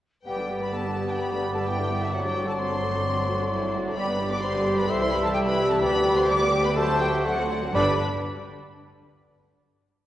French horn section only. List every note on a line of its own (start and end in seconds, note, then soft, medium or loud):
0.24 0.69 B4 soft
0.72 1.66 G4 soft
1.68 2.13 E4 soft
2.12 2.59 D4 soft
2.58 3.49 C4 medium
3.50 3.95 E4 medium
3.96 4.42 D4 medium
4.42 4.89 G4 medium
4.86 5.34 A4 medium
5.34 6.73 G4 medium
6.77 7.24 F#4 medium
7.25 7.50 A4 medium
7.74 7.95 G3 medium
7.74 7.94 D4 medium